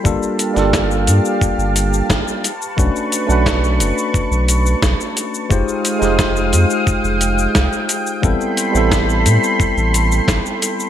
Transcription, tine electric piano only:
\new Staff \with { instrumentName = "Tine electric piano" } { \time 4/4 \key b \phrygian \tempo 4 = 88 <g bes d' f' a'>8. <g bes d' f' a'>2~ <g bes d' f' a'>8. r8 | <a cis' d' fis' b'>8. <a cis' d' fis' b'>2.~ <a cis' d' fis' b'>16 | <aes ees' f' g' c''>8. <aes ees' f' g' c''>2.~ <aes ees' f' g' c''>16 | <g b c' e' a'>8. <g b c' e' a'>2.~ <g b c' e' a'>16 | }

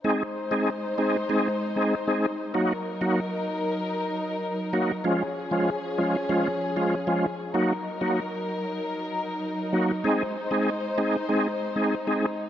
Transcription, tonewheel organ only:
\new Staff \with { instrumentName = "Tonewheel organ" } { \time 4/4 \key aes \mixolydian \tempo 4 = 96 <aes c' ees' aes'>16 r8 <aes c' ees' aes'>16 r8 <aes c' ees' aes'>16 r16 <aes c' ees' aes'>16 r8 <aes c' ees' aes'>16 r16 <aes c' ees' aes'>16 r8 | <ges bes ees' ges'>16 r8 <ges bes ees' ges'>16 r2 r8 <ges bes ees' ges'>16 r16 | <f aes des' f'>16 r8 <f aes des' f'>16 r8 <f aes des' f'>16 r16 <f aes des' f'>16 r8 <f aes des' f'>16 r16 <f aes des' f'>16 r8 | <ges bes ees' ges'>16 r8 <ges bes ees' ges'>16 r2 r8 <ges bes ees' ges'>16 r16 |
<aes c' ees' aes'>16 r8 <aes c' ees' aes'>16 r8 <aes c' ees' aes'>16 r16 <aes c' ees' aes'>16 r8 <aes c' ees' aes'>16 r16 <aes c' ees' aes'>16 r8 | }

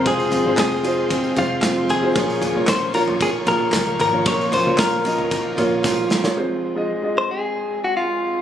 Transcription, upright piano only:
<<
  \new Staff \with { instrumentName = "Upright piano" } { \time 4/4 \key bes \minor \tempo 4 = 114 <aes f' c''>8. <aes f' c''>8. <aes f' c''>4 <aes f' c''>4~ <aes f' c''>16 <aes f' c''>16 | <bes f' des''>8. <bes f' des''>8. <bes f' des''>4 <bes f' aes'>4~ <bes f' aes'>16 <bes f' des''>16 | <bes f' bes'>8. <bes f' des''>8. <bes f' ees''>4 <bes f' des''>4~ <bes f' des''>16 <bes f' des''>16 | <aes f' c''>8. <aes f' ees''>8 <aes f' ees''>4.~ <aes f' ees''>16 r4 | }
  \new Staff \with { instrumentName = "Upright piano" } { \clef bass \time 4/4 \key bes \minor c4. r2 r8 | <bes, f>4. r2 r8 | <bes, f>4. r2 r8 | c4. r2 r8 | }
>>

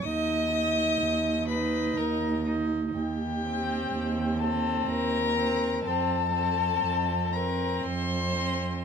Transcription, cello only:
\new Staff \with { instrumentName = "Cello" } { \clef bass \time 3/4 \key b \lydian \tempo 4 = 62 dis,4 dis,4 dis,4 | \key f \mixolydian ees,4 ees,4 ees,4 | f,4 f,4 f,4 | }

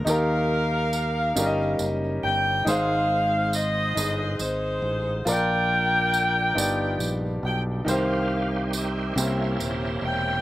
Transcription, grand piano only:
\new Staff \with { instrumentName = "Grand piano" } { \time 6/8 \key ees \major \tempo 4. = 46 <ees ees' g' bes'>4. <g des' ees' g' bes' d'' ees''>4. | <aes, ees' aes' c''>4. <ees' aes' ees''>4. | <bes, f' bes' d''>4. <g, b ees' f' g' d''>4. | <c ees g' c''>4. <c bes des' e' g' c''>4. | }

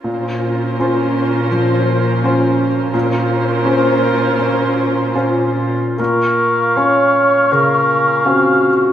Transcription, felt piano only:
\new Staff \with { instrumentName = "Felt piano" } { \time 4/4 \key bes \minor \tempo 4 = 81 bes,4 <des' f' c''>4 f4 <des' f' c''>4 | bes,4 <des' f' c''>4 des'4 <des' f' c''>4 | bes,4 <des' f' des''>4 des4 <c' des' f''>4 | }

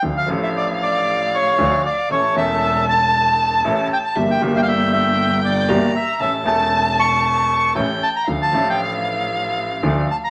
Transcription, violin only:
\new Staff \with { instrumentName = "Violin" } { \time 4/4 \key d \minor \tempo 4 = 116 f''1 | a''1 | e''4 g''2 bes''4 | a''2. g''4 |
f''1 | }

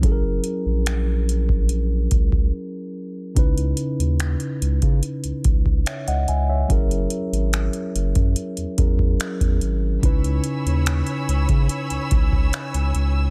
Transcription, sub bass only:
\new Staff \with { instrumentName = "Sub bass" } { \clef bass \time 4/4 \key cis \dorian \tempo 4 = 72 fis,,8 r16 ais,,4.~ ais,,16 cis,8 r4 | cis,8 r16 dis,8 r16 cis,16 cis16 r16 cis,16 cis,8 r16 cis,16 cis,8 | fis,,8 r16 gis,,8 r16 fis,,16 fis,16 r16 e,16 e,8 r16 e,16 gis,,8 | cis,8 r16 dis,8 r16 cis,16 cis16 r16 cis,16 cis,8 r16 cis,16 cis,8 | }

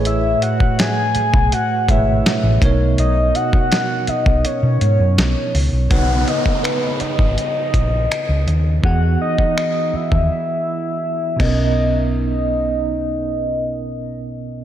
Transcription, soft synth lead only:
\new Staff \with { instrumentName = "Soft synth lead" } { \time 4/4 \key b \major \tempo 4 = 82 e''8 fis''8 gis''4 fis''8 e''4 r8 | dis''8 fis''4 dis''8 cis''4. r8 | fis''8 dis''8 b'8 dis''8 dis''4. r8 | fis''8 dis''4 e''8 e''4. dis''8~ |
dis''1 | }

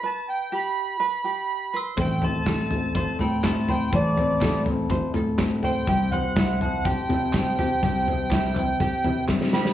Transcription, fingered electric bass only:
\new Staff \with { instrumentName = "Fingered electric bass" } { \clef bass \time 4/4 \key a \dorian \tempo 4 = 123 r1 | a,,2 a,,16 r16 a,4. | a,,2 a,,16 r16 a,4. | c,2 c,16 r16 c4. |
c,2 c,16 r16 c4. | }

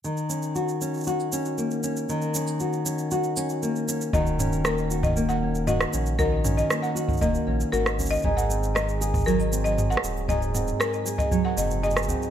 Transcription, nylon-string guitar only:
\new Staff \with { instrumentName = "Nylon-string guitar" } { \time 4/4 \key ees \dorian \tempo 4 = 117 ees8 des'8 ges'8 des'8 ges'8 des'8 bes8 des'8 | ees8 des'8 ges'8 des'8 ges'8 des'8 bes8 des'8 | <ees ges'>8 des'8 bes8 ges'8 bes8 des'8 ges'8 des'8 | <ees ges'>8 des'8 bes8 ges'8 bes8 des'8 ges'8 des'8 |
<aes, aes'>8 c'8 aes8 aes'8 ges8 c'8 aes'8 c'8 | <aes, aes'>8 c'8 aes8 aes'8 ges8 c'8 aes'8 c'8 | }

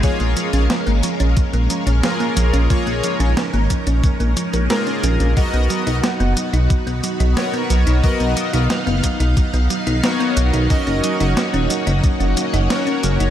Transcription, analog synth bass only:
\new Staff \with { instrumentName = "Analog synth bass" } { \clef bass \time 4/4 \key ais \phrygian \tempo 4 = 90 r16 ais,,16 r16 ais,,16 r16 gis,,16 r16 ais,,16 r16 ais,,16 r16 ais,,16 r8 ais,,16 ais,,16 | r16 ais,,16 r16 ais,,16 r16 gis,,16 r16 ais,,16 r16 ais,,16 r16 ais,,16 r8 ais,,16 ais,,16 | r16 b,,16 r16 b,,16 r16 fis,,16 r16 b,,16 r16 b,,16 r16 b,,16 r8 b,,16 b,,16 | r16 b,,16 r16 b,,16 r16 fis,,16 r16 b,,16 r16 b,,16 r16 b,,16 r8 b,,16 b,,16 |
r16 fis,,16 r16 fis,,16 r16 dis,,16 r16 fis,,16 r16 fis,,16 r16 fis,,16 r8 fis,,16 fis,,16 | }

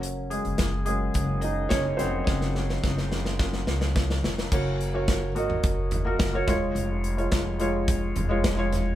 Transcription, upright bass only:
\new Staff \with { instrumentName = "Upright bass" } { \clef bass \time 4/4 \key ges \lydian \tempo 4 = 107 ges,,8. ges,,16 ges,,4 ges,,4 ges,,8 f,,8 | ges,,4 ges,,4. des,4 f,,8 | ges,,4. aes,,8 ges,,4 ges,,8 f,,8 | f,,4 f,,4. f,,4. | }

